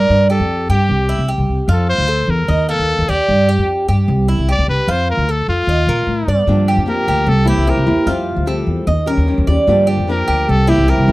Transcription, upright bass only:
0.10 G2
0.40 F2
0.69 G2
0.89 C2
1.18 C2
1.38 C2
1.48 C2
1.68 F2
1.98 D2
2.27 E2
2.48 D#2
2.79 D#2
2.99 D#2
3.09 D#2
3.28 G2
3.58 F2
3.88 G2
4.08 C2
4.38 C2
4.58 C2
4.68 C2
4.87 F2
5.17 D2
5.48 F2
5.67 D#2
5.87 A#2
6.07 A2
6.27 G2
6.47 G2
6.77 F2
7.08 D2
7.27 C2
7.57 C2
7.77 C2
7.87 E2
8.06 F2
8.36 D2
8.67 E2
8.87 D#2
9.17 D#2
9.38 D#2
9.47 D#2
9.67 G2
9.97 F2
10.28 D2
10.49 C2
10.78 C2
10.98 C2
11.08 E2

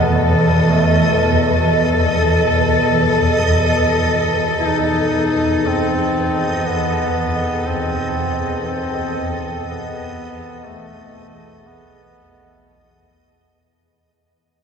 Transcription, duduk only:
Already playing: B3
0.66 A3
4.60 E4
4.67 D#4
5.67 C4
6.67 B3
7.67 C4
8.68 C4
9.68 B3
10.67 A3
11.68 B3

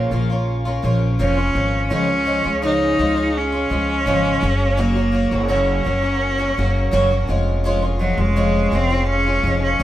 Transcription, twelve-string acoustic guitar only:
Already playing: A#2 A#3 C#4 F4
0.11 F3 A#3 C#4 F4
0.30 A#3 C#4 F4
0.65 A#3 C#4 F4
0.82 F3 A#3 C#4 F4
1.19 A#2 F3 A#3 C#4 F4
1.37 A#3 C#4 F4
1.54 F3 A#3 C#4 F4
1.90 C#3 F3 G#3 C#4 F4
2.07 G#3 C#4 F4
2.25 F3 G#3 C#4 F4
2.44 G#3 C#4 F4
2.62 C#3 F3 G#3 C#4 F4
2.98 F3 G#3 C#4 F4
3.15 G#3 C#4 F4
3.52 G#3 C#4 F4
3.70 F3 G#3 C#4 F4
4.06 C#3 F3 G#3 C#4 F4
4.41 F#3 A#3 C#4 F#4
4.77 F#2 C#3 F#3 A#3 C#4 F#4
4.95 F#3 A#3 C#4 F#4
5.12 F#3 A#3 C#4 F#4
5.31 F#3 A#3 C#4 F#4
5.48 F#2 C#3 F#3 A#3 C#4 F#4
5.85 F#3 A#3 C#4 F#4
6.03 F#3 A#3 C#4 F#4
6.38 F#3 A#3 C#4 F#4
6.57 F#3 A#3 C#4 F#4
6.91 F#2 C#3 F#3 A#3 C#4 F#4
7.10 F#3 A#3 C#4 F#4
7.27 F3 G#3 C#4 F4
7.64 F3 G#3 C#4 F4
7.82 G#3 C#4 F4
7.99 F3 G#3 C#4 F4
8.17 G#3 C#4 F4
8.36 F3 G#3 C#4 F4
8.72 F3 G#3 C#4 F4
8.90 G#3 C#4 F4
9.26 G#3 C#4 F4
9.44 F3 G#3 C#4 F4
9.79 F3

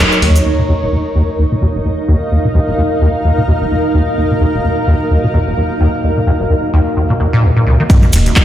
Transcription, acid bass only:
0.22 D#2
0.46 D#2
0.59 A#2
0.69 D#2
0.82 D#1
0.92 D#2
1.15 D#2
1.39 D#2
1.52 A#2
1.62 D#2
1.75 D#1
1.85 D#2
2.08 D#2
2.32 D#2
2.45 A#2
2.55 D#2
2.68 D#1
2.78 D#2
3.01 D#2
3.25 D#2
3.38 A#2
3.48 D#2
3.61 D#1
3.71 D#2
3.94 D#2
4.18 D#2
4.31 A#2
4.41 D#2
4.54 D#1
4.64 D#2
4.87 D#2
5.11 D#2
5.24 A#2
5.34 D#2
5.47 D#1
5.57 D#2
5.81 D#2
6.04 D#2
6.17 A#2
6.27 D#2
6.40 D#1
6.50 D#2
6.74 D#2
6.97 D#2
7.10 A#2
7.20 D#2
7.33 A#2
7.43 D#2
7.57 A#2
7.67 C#2
7.80 D#3
7.90 D#2
8.03 A#2
8.13 D#2
8.26 D#1
8.36 D#2

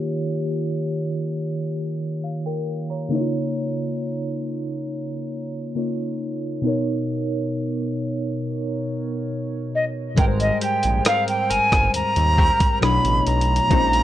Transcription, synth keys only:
Already playing: D#3 A#3 F4 G4 C#5
2.24 F5
2.46 A#4 G5
2.90 C#5 A#5
3.09 C#3 A#3 D#4
3.14 E4 C#5
3.20 F4
5.75 C#3 A#3 D#4 F4 C#5
6.62 B2 B3 D#4
6.67 A#4 C#5
10.15 G#2 G3 G#3
10.19 A#4 B4
10.28 C5
12.81 B2 F#3 A3 D4 E4 C#5
13.67 A#2 F3 G#3 C4
13.73 D#4 C5
13.78 C#4

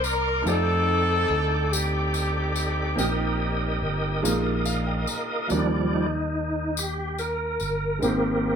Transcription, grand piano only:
Already playing: A#3 C4 D4 G4 C5
0.42 A3 D#4 F4
0.47 G4 D5
2.96 A#2 A#3 D#4 G4
4.22 A#2 G#3 A#3 D#4 F4 A#4
4.66 F5
4.87 G5
5.09 A#5
5.47 D#3 F#3 A#3 D4
5.52 G3 D#4 A#4
7.99 G#2 G#3 C4 D#4
8.04 G4 C5

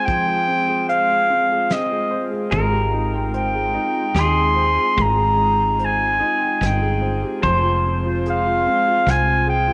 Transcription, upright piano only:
Already playing: C4 G#4 C5
0.07 F3
0.27 G#4
0.48 C4
0.68 G#4
0.89 C5
1.09 G#4
1.30 C4
1.52 G#4
1.71 C4
1.91 G#4
2.11 C5
2.31 G#4
2.51 G#3
2.70 G4
2.93 D#4
3.14 G5
3.34 C5
3.55 G#4
3.74 D#4
4.15 D#4
4.56 C5
4.96 G#3
5.17 G#4
5.37 D#4
5.79 C5
6.19 D#4
6.40 G5
6.61 D#4
6.82 G#4
7.02 C5
7.22 G4
7.41 F3
7.63 F4
7.84 C4
8.05 F4
8.26 G#4
8.45 F4
8.67 C4
8.87 F4
9.07 C4
9.27 F4
9.47 G#4
9.67 F4

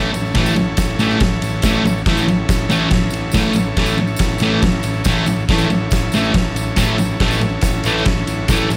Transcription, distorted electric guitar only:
0.35 A2 E3 A3
0.99 A2 E3 A3
1.65 A2 E3 A3
2.07 A2 E3 A3
2.70 A2 E3 A3
3.34 A2 E3 A3
3.77 A2 E3 A3
4.42 A2 E3 A3
5.06 A2 E3 A3
5.49 A2 E3 A3
6.14 A2 E3 A3
6.77 A2 E3 A3
7.21 A2 E3 A3
7.86 A2 E3 A3
8.50 A2 E3 A3

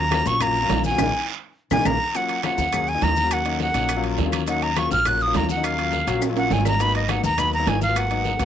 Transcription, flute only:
Already playing: A#5
0.27 C#6
0.42 A#5
0.86 G#5
1.72 G#5
1.86 A#5
2.16 F#5
2.45 F#5
2.89 G#5
3.03 A#5
3.33 F#5
3.62 F#5
4.49 F#5
4.63 A#5
4.78 C#6
4.92 F6
5.07 F#6
5.22 D#6
5.36 A#5
5.51 F#5
5.65 F5
6.38 F#5
6.53 G#5
6.67 A#5
6.82 B5
6.96 D#5
7.10 F#5
7.25 A#5
7.39 B5
7.54 A#5
7.68 G#5
7.82 F5
7.98 F#5

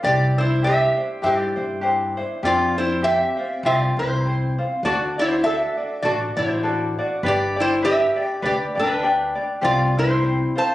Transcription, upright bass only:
0.04 C2
1.23 G2
1.57 G2
2.43 F2
3.63 C2
3.97 C2
4.83 D2
6.03 A1
6.37 A1
7.23 G1
8.42 D2
8.77 D2
9.63 C2

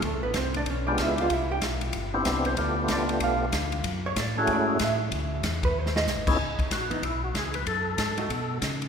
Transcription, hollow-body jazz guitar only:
0.04 A3 A4
0.23 B3 B4
0.37 C4 C5
0.57 D4 D5
0.70 C#4 C#5
0.87 D4 D5
1.02 E4 E5
1.21 F4 F5
1.33 E4 E5
1.51 G4 G5
2.46 C5
2.61 D5
2.93 D5
3.24 F5
4.06 C#5
4.20 D5
4.53 D5
4.84 E5
5.65 B4
5.79 C5
5.97 D#5
6.90 E3 B3 D#4
8.18 A3 D#4 F#4

